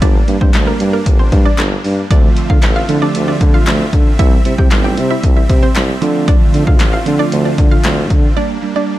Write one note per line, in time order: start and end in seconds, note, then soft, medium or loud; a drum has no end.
0.02 0.19 G1 loud
0.02 0.22 G3 medium
0.02 2.08 G3 medium
0.02 2.08 A#3 medium
0.02 0.22 A#3 medium
0.02 2.08 D4 medium
0.02 0.22 D4 medium
0.02 0.20 D4 medium
0.02 0.20 D5 medium
0.02 kick loud
0.02 closed hi-hat loud
0.28 0.36 G2 loud
0.28 0.38 G3 medium
0.28 0.38 A#3 medium
0.28 0.38 D4 medium
0.28 closed hi-hat medium
0.41 0.50 G2 loud
0.41 1.20 G3 medium
0.41 1.20 A#3 medium
0.41 0.50 C4 medium
0.41 1.21 D4 medium
0.41 0.50 C5 medium
0.41 kick loud
0.54 0.71 D2 medium
0.54 snare medium
0.54 clap loud
0.54 clap medium
0.54 closed hi-hat loud
0.67 0.77 A#3 medium
0.67 0.76 A#4 medium
0.80 0.97 G2 loud
0.80 closed hi-hat medium
0.93 1.03 A#3 medium
0.93 1.02 A#4 medium
1.06 1.23 G1 loud
1.06 kick medium
1.06 closed hi-hat loud
1.19 1.29 C4 medium
1.19 1.28 C5 medium
1.32 1.49 G2 loud
1.32 kick loud
1.32 closed hi-hat medium
1.45 1.64 D4 medium
1.45 1.63 D5 medium
1.58 1.75 G1 loud
1.58 snare medium
1.58 clap loud
1.58 clap medium
1.58 closed hi-hat medium
1.84 2.01 G2 loud
1.84 open hi-hat medium
2.10 2.27 D2 loud
2.10 2.70 D3 medium
2.10 2.70 F3 medium
2.10 2.70 A3 medium
2.10 4.17 A3 medium
2.10 8.33 C4 medium
2.10 2.70 C4 medium
2.10 2.29 D4 medium
2.10 4.17 F4 medium
2.10 2.70 F4 medium
2.10 2.28 D5 loud
2.10 8.33 E5 medium
2.10 kick loud
2.10 closed hi-hat loud
2.37 closed hi-hat medium
2.50 2.58 D3 loud
2.50 2.59 F4 medium
2.50 2.59 F5 medium
2.50 kick medium
2.62 2.80 A1 medium
2.62 snare medium
2.62 clap loud
2.62 clap medium
2.62 closed hi-hat loud
2.76 2.85 F4 medium
2.76 2.85 F5 medium
2.89 2.99 D3 medium
2.89 3.06 D3 loud
2.89 2.99 F3 medium
2.89 2.99 A3 medium
2.89 2.99 C4 medium
2.89 2.99 E4 medium
2.89 closed hi-hat medium
3.02 3.81 D3 medium
3.02 3.81 F3 medium
3.02 3.81 A3 medium
3.02 3.81 C4 medium
3.02 3.11 D4 medium
3.02 3.81 G4 medium
3.02 3.11 D5 medium
3.15 3.32 D2 loud
3.15 closed hi-hat loud
3.28 3.37 D4 medium
3.28 3.37 D5 medium
3.41 3.58 D3 loud
3.41 kick loud
3.41 closed hi-hat medium
3.54 3.72 F4 medium
3.54 3.72 F5 medium
3.67 3.84 D2 loud
3.67 snare medium
3.67 clap loud
3.67 clap medium
3.67 closed hi-hat medium
3.93 4.10 D3 loud
3.93 kick medium
3.93 closed hi-hat medium
4.19 4.36 C2 loud
4.19 4.39 G3 medium
4.19 6.00 G3 medium
4.19 4.39 C4 medium
4.19 4.39 E4 medium
4.19 4.38 E4 medium
4.19 4.37 E5 medium
4.19 kick loud
4.19 closed hi-hat loud
4.45 4.54 C3 loud
4.45 4.55 G3 medium
4.45 4.55 C4 medium
4.45 4.55 E4 medium
4.45 closed hi-hat medium
4.58 4.67 C3 loud
4.58 5.38 G3 medium
4.58 5.38 C4 medium
4.58 5.38 E4 medium
4.58 4.68 G4 medium
4.58 4.67 G5 medium
4.58 kick medium
4.71 4.99 G1 loud
4.71 snare medium
4.71 clap loud
4.71 clap medium
4.71 closed hi-hat loud
4.84 4.94 G4 medium
4.84 4.93 G5 medium
4.97 5.14 C3 loud
4.97 closed hi-hat medium
5.10 5.20 E4 medium
5.10 5.19 E5 medium
5.23 5.41 C2 loud
5.23 kick medium
5.23 closed hi-hat medium
5.37 5.46 E4 medium
5.37 5.46 E5 medium
5.49 5.67 C3 loud
5.49 kick medium
5.49 closed hi-hat medium
5.63 5.81 C4 medium
5.63 5.80 C5 medium
5.75 5.93 C2 loud
5.75 snare medium
5.75 clap loud
5.75 clap medium
5.75 closed hi-hat medium
6.02 6.85 D3 loud
6.02 6.36 D3 loud
6.02 8.34 D3 medium
6.02 6.85 F3 loud
6.02 6.85 A3 medium
6.02 8.34 A3 medium
6.02 6.85 C4 medium
6.02 8.34 F4 medium
6.02 6.85 F4 loud
6.02 closed hi-hat medium
6.28 6.46 D4 medium
6.28 6.46 D5 loud
6.28 kick loud
6.28 closed hi-hat loud
6.54 6.62 D3 loud
6.54 closed hi-hat medium
6.67 6.82 D3 loud
6.67 6.76 F4 medium
6.67 6.76 F5 medium
6.67 kick loud
6.80 6.97 A1 medium
6.80 snare medium
6.80 clap loud
6.80 clap medium
6.80 closed hi-hat loud
6.93 7.03 F4 medium
6.93 7.02 F5 medium
7.06 7.16 D3 medium
7.06 7.23 D3 loud
7.06 7.16 F3 medium
7.06 7.16 A3 medium
7.06 7.16 C4 medium
7.06 7.16 F4 medium
7.06 closed hi-hat medium
7.19 7.99 D3 medium
7.19 7.99 F3 medium
7.19 7.99 A3 medium
7.19 7.99 C4 medium
7.19 7.29 D4 medium
7.19 7.99 F4 medium
7.19 7.28 D5 medium
7.32 7.49 D2 loud
7.32 closed hi-hat loud
7.45 7.55 D4 medium
7.45 7.54 D5 medium
7.58 7.75 D3 loud
7.58 kick medium
7.58 closed hi-hat medium
7.71 7.90 F4 medium
7.71 7.89 F5 medium
7.84 8.12 D2 loud
7.84 snare medium
7.84 clap loud
7.84 clap medium
7.84 closed hi-hat medium
8.10 8.27 D3 loud
8.10 kick medium
8.10 closed hi-hat medium
8.36 8.56 G3 medium
8.36 8.99 G3 medium
8.36 8.56 A#3 medium
8.36 8.99 A#3 medium
8.36 8.99 D4 medium
8.36 8.57 D4 medium
8.36 8.55 D4 medium
8.36 8.54 D5 medium
8.62 8.72 G3 medium
8.62 8.73 A#3 medium
8.62 8.73 D4 medium
8.76 8.99 G3 medium
8.76 8.99 A#3 medium
8.76 8.99 D4 medium
8.76 8.85 D4 medium
8.76 8.85 D5 medium